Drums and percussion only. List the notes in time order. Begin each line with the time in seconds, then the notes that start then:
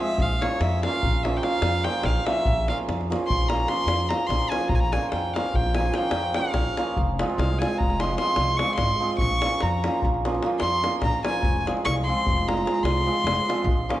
0.18 davul low
0.42 davul high
0.52 davul high
0.61 davul high
0.83 davul high
1.03 davul low
1.14 davul high
1.25 davul high
1.34 davul high
1.43 davul high
1.62 davul high
1.85 davul high
2.03 davul high, davul low
2.27 davul high
2.45 davul low
2.68 davul high
2.80 davul high
2.89 davul high
3.01 davul high
3.12 davul high
3.30 davul low
3.41 davul high
3.50 davul high
3.60 davul high
3.68 davul high
3.88 davul high
3.99 davul high
4.11 davul high
4.30 davul high, davul low
4.52 davul high
4.61 davul high
4.69 davul low
4.93 davul high
5.03 davul high
5.12 davul high
5.36 davul high
5.54 davul low
5.64 davul high
5.75 davul high
5.86 davul high
5.94 davul high
6.11 davul high
6.34 davul high
6.54 davul high, davul low
6.77 davul high
6.97 davul low
7.19 davul high
7.30 davul high
7.39 davul high
7.62 davul high
7.80 davul low
7.90 davul high
8.00 davul high
8.10 davul high
8.18 davul high
8.36 davul high
8.59 davul high
8.78 davul high, davul low
9.18 davul low
9.42 davul high
9.51 davul high
9.60 davul high
9.84 davul high
10.02 davul low
10.14 davul high
10.25 davul high
10.35 davul high
10.43 davul high
10.60 davul high
10.84 davul high
11.02 davul high, davul low
11.25 davul high
11.43 davul low
11.56 davul high
11.67 davul high
11.77 davul high
11.86 davul high
11.98 davul high
12.27 davul low
12.38 davul high
12.49 davul high
12.57 davul high
12.67 davul high
12.78 davul high
12.85 davul high
12.97 davul high
13.27 davul high
13.39 davul high
13.50 davul high
13.58 davul high
13.67 davul low
13.90 davul high